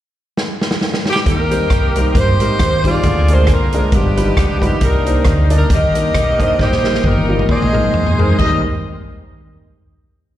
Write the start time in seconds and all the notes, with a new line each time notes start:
0.37 snare
0.61 snare
0.71 snare
0.81 snare
0.94 snare
1.06 snare
1.10 G4
1.16 snare
1.26 D#2 D#3 A#3 C4 G4 A#4, kick, closed hi-hat
1.50 G3 C4 D#4 A#4, closed hi-hat
1.70 C2, kick, cross-stick, closed hi-hat
1.96 G3 C4 D#4 A#4, closed hi-hat
2.15 G2 G4 C5, kick, closed hi-hat
2.40 G#2 G3 C4 D#4 A#4, closed hi-hat
2.59 D#2, kick, cross-stick, closed hi-hat
2.84 G3 C4 D#4 F4 G#4 D5, kick, closed hi-hat
3.03 D2 D3 A#3 C4 G#4, kick, closed hi-hat
3.28 G#3 C4 D4 A#4 C5, closed hi-hat
3.47 C2, kick, cross-stick, closed hi-hat
3.51 F4 A#4
3.73 G#3 C4 D4 A#4, closed hi-hat
3.92 G1 G2 D#3 F3 B3 D4 F4 G4, kick, closed hi-hat
4.00 G4
4.16 G3 D#4 F4 B4, cross-stick, closed hi-hat
4.37 C#2, kick, cross-stick, closed hi-hat
4.61 G3 D#4 F4 G4 B4, kick, closed hi-hat
4.81 C2 C3 G3 A#3 C4 D#4 A#4, kick, closed hi-hat
4.85 D4 A#4
5.05 A#3 D4 D#4 C5, closed hi-hat
5.25 D2, kick, cross-stick, closed hi-hat
5.50 A#3 D4 D#4 D5, closed hi-hat
5.55 A#4
5.70 D#2 G4 A#4, kick, closed hi-hat
5.75 D#5
5.94 A#3 D4 D#4 A#4, closed hi-hat
6.15 B1, kick, cross-stick, closed hi-hat
6.38 A#3 D4 D#4 C5, kick, closed hi-hat
6.59 A#1 A#2 G3 A#3 D#4 G4 A#4 C5, kick, snare
6.72 snare
6.84 G3 A#3 D#4 A#4, snare
6.94 snare
7.04 G1 D#4 G4 A#4, kick, high tom
7.17 high tom
7.28 G3 A#3 D#4 F4, high tom
7.39 mid tom
7.49 A#1 A#2 G#3 C4 D#4 G#4 A#4 C5 D#5, kick, mid tom
7.62 mid tom
7.72 G#3 C4 D#4 A#4, mid tom
7.84 mid tom
7.94 E2, mid tom
8.06 floor tom
8.18 G#3 C4 D#4 A#4, floor tom
8.29 floor tom
8.37 D#2 G3 C4 D#4 A#4 D#5, kick, crash